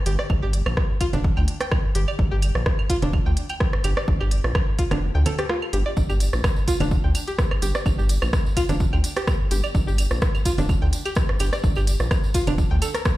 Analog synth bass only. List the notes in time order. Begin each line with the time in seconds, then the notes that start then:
0.06 G1
0.30 G1
0.42 G1
0.66 A#1
1.13 F1
1.37 D2
1.95 G1
2.19 G1
2.31 G1
2.55 A#1
3.02 F1
3.26 D2
3.84 G1
4.08 G1
4.20 G1
4.44 A#1
4.91 F1
5.15 D2
5.73 G1
5.97 G1
6.09 G1
6.33 A#1
6.80 F1
7.04 D2
7.62 G1
7.86 G1
7.99 G1
8.22 A#1
8.69 F1
8.93 D2
9.51 G1
9.75 G1
9.87 G1
10.11 A#1
10.58 F1
10.82 D2
11.40 G1
11.64 G1
11.76 G1
12.00 A#1
12.47 F1
12.71 D2